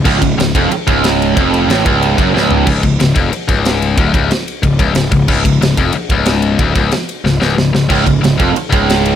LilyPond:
<<
  \new Staff \with { instrumentName = "Distorted electric guitar" } { \clef bass \time 4/4 \key cis \major \tempo 4 = 184 cis,8 cis,8 cis,8 eis,8 r8 cis,4. | eis,4 a,8 cis,4 fis,8 cis,4 | cis,8 cis,8 cis,8 eis,8 r8 cis,4. | d,8 cis,8 r4 cis,8 cis,8 cis,8 cis,8 |
cis,8 cis,8 cis,8 eis,8 r8 cis,4. | d,8 cis,8 r4 cis,8 cis,8 cis,8 cis,8 | cis,8 cis,8 cis,8 eis,8 r8 cis,4. | }
  \new Staff \with { instrumentName = "Distorted electric guitar" } { \clef bass \time 4/4 \key cis \major cis,8 cis,8 cis,8 eis,8 r8 cis,4. | eis,4 a,8 cis,4 fis,8 cis,4 | r1 | r1 |
r1 | r1 | cis,8 cis,8 cis,8 eis,8 r8 cis,4. | }
  \new Staff \with { instrumentName = "Picked electric bass" } { \clef bass \time 4/4 \key cis \major cis,,8 cis,,8 cis,,8 eis,,8 r8 cis,,4. | eis,,4 a,,8 cis,,4 fis,,8 cis,,4 | cis,,8 cis,,8 cis,,8 eis,,8 r8 cis,,4. | d,,8 cis,,8 r4 cis,,8 cis,,8 cis,,8 cis,,8 |
cis,,8 cis,,8 cis,,8 eis,,8 r8 cis,,4. | d,,8 cis,,8 r4 cis,,8 cis,,8 cis,,8 cis,,8 | cis,,8 cis,,8 cis,,8 eis,,8 r8 cis,,4. | }
  \new DrumStaff \with { instrumentName = "Drums" } \drummode { \time 4/4 <cymc bd>8 <bd cymr>8 <cymr sn>8 <bd cymr>8 cymr8 <bd cymr>8 <cymr sn>8 cymr8 | <bd cymr>8 cymr8 <cymr sn>8 <bd cymr>8 cymr8 <bd cymr>8 sn8 tomfh8 | <cymc bd>8 <bd cymr>8 <cymr sn>8 <bd cymr>8 cymr8 <bd cymr>8 <cymr sn>8 cymr8 | <bd cymr>8 <bd cymr>8 <cymr sn>8 cymr8 <bd cymr>8 <bd cymr>8 <cymr sn>8 <bd cymr>8 |
<cymc bd>8 <bd cymr>8 <cymr sn>8 <bd cymr>8 cymr8 <bd cymr>8 <cymr sn>8 cymr8 | <bd cymr>8 <bd cymr>8 <cymr sn>8 cymr8 sn8 sn8 sn8 sn8 | <cymc bd>8 <bd cymr>8 <cymr sn>8 <bd cymr>8 cymr8 <bd cymr>8 <cymr sn>8 cymr8 | }
>>